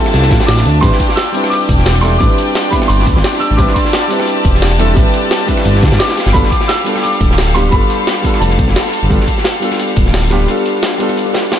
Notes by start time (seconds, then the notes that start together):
Already playing: G3 C4 D4 E4 F4 E5 A5
0.00 A4
0.05 cross-stick, snare
0.13 C2, snare, closed hi-hat
0.22 snare, closed hi-hat, shaker
0.30 A1, kick, snare, closed hi-hat, ride, shaker
0.40 snare, closed hi-hat
0.47 A1 D6, snare, closed hi-hat
0.57 snare, closed hi-hat, shaker
0.66 D2, closed hi-hat, open hi-hat, ride, shaker
0.81 A1 G3 C4 D4 E4 G4 B4 D5 G5 C6, kick, closed hi-hat, crash
0.92 snare, shaker
1.00 kick, closed hi-hat, ride, shaker
1.09 snare
1.16 E6, snare, closed hi-hat
1.32 G3 C4 D4 E4, closed hi-hat, open hi-hat, ride, shaker
1.37 B4
1.44 cross-stick, snare
1.50 D6, closed hi-hat
1.61 closed hi-hat
1.69 E1, kick, closed hi-hat, ride, shaker
1.78 snare
1.86 snare, closed hi-hat, open hi-hat
1.96 cross-stick
2.01 G3 C4 D4 E4 A4 C6, cross-stick, snare, closed hi-hat, open hi-hat, ride, shaker
2.18 A1 G3 C4 D4 E4 D6, kick, closed hi-hat
2.23 B4
2.30 closed hi-hat, shaker
2.38 closed hi-hat, ride, shaker
2.55 snare, closed hi-hat
2.70 G3 C4 D4 E4 B5, kick, cross-stick, closed hi-hat, open hi-hat, ride, shaker
2.75 B3
2.82 cross-stick, snare
2.88 G1 C6, closed hi-hat
2.99 snare
3.07 D2, kick, closed hi-hat, ride, shaker
3.16 G1, snare
3.24 snare, closed hi-hat
3.34 snare
3.40 E6, closed hi-hat, open hi-hat, ride, shaker
3.51 A1
3.57 A1 G3 C4 D4 E4 B4 A5 D6, kick, closed hi-hat
3.67 snare, shaker
3.74 C6, kick, closed hi-hat, ride, shaker
3.85 snare
3.93 snare, closed hi-hat
4.08 G3 C4 D4 E4, closed hi-hat, open hi-hat, ride, shaker
4.13 B4
4.20 cross-stick, snare
4.27 closed hi-hat
4.37 closed hi-hat
4.45 E1, kick, closed hi-hat, ride, shaker
4.54 snare
4.62 snare, closed hi-hat, open hi-hat
4.72 cross-stick
4.78 G3 C4 D4 E4 A4, cross-stick, snare, closed hi-hat, open hi-hat, ride, shaker
4.94 A1 G3 C4 D4 E4, kick, closed hi-hat
4.99 B4
5.06 closed hi-hat, shaker
5.14 closed hi-hat, ride, shaker
5.31 snare, closed hi-hat
5.40 closed hi-hat, shaker
5.46 G3 C4 D4 E4, kick, cross-stick, closed hi-hat, open hi-hat, ride, shaker
5.50 B4
5.57 cross-stick, snare
5.65 G1, closed hi-hat
5.75 snare
5.83 D2, kick, snare, closed hi-hat, ride, shaker
5.92 G1, snare, closed hi-hat
5.99 D6, snare, closed hi-hat
6.09 snare, closed hi-hat
6.17 A4 F5, snare, closed hi-hat, open hi-hat, ride, shaker
6.26 G1, snare, closed hi-hat
6.33 G1 G3 B3 D4 F4 A4 B5, kick, closed hi-hat
6.43 snare, shaker
6.51 D6, kick, closed hi-hat, ride, shaker
6.61 snare
6.68 E6, snare, closed hi-hat
6.84 G3 B3 D4 F4, closed hi-hat, open hi-hat, ride, shaker
6.89 A4
6.96 cross-stick, snare
7.02 D6, closed hi-hat
7.13 closed hi-hat
7.21 D1, kick, closed hi-hat, ride, shaker
7.31 snare
7.38 snare, closed hi-hat, open hi-hat
7.47 cross-stick
7.54 G3 B3 D4 F4 G4 C6, cross-stick, snare, closed hi-hat, open hi-hat, ride, shaker
7.70 G1 G3 B3 D4 F4 B5, kick, closed hi-hat
7.75 A4
7.82 closed hi-hat, shaker
7.90 closed hi-hat, ride, shaker
8.07 snare, closed hi-hat
8.17 closed hi-hat
8.22 G3 B3 D4 F4, kick, cross-stick, closed hi-hat, open hi-hat, ride, shaker
8.27 A4
8.34 cross-stick, snare
8.40 F1 A5, closed hi-hat
8.50 snare
8.59 B1, kick, closed hi-hat, ride, shaker
8.68 F1, snare
8.76 snare, closed hi-hat
8.86 snare
8.93 closed hi-hat, open hi-hat, ride, shaker
9.03 G1
9.09 G1 G3 B3 D4 F4 A4, kick, closed hi-hat
9.20 snare, shaker
9.28 kick, closed hi-hat, ride, shaker
9.38 snare
9.44 snare, closed hi-hat
9.60 G3 B3 D4 F4, closed hi-hat, open hi-hat, ride, shaker
9.65 A4
9.71 cross-stick, snare
9.79 closed hi-hat
9.88 closed hi-hat
9.96 D1, kick, closed hi-hat, ride, shaker
10.06 snare
10.13 snare, closed hi-hat, open hi-hat
10.23 cross-stick
10.30 G3 B3 D4 F4 G4, cross-stick, snare, closed hi-hat, open hi-hat, ride, shaker
10.46 G3 B3 D4 F4, closed hi-hat
10.51 A4
10.57 closed hi-hat, shaker
10.65 closed hi-hat, ride, shaker
10.82 snare, closed hi-hat
10.92 closed hi-hat, shaker
10.98 G3 B3 D4 F4, cross-stick, open hi-hat, ride, shaker
11.03 A4
11.09 cross-stick
11.17 closed hi-hat
11.27 shaker
11.34 snare, closed hi-hat, ride, shaker
11.52 snare, closed hi-hat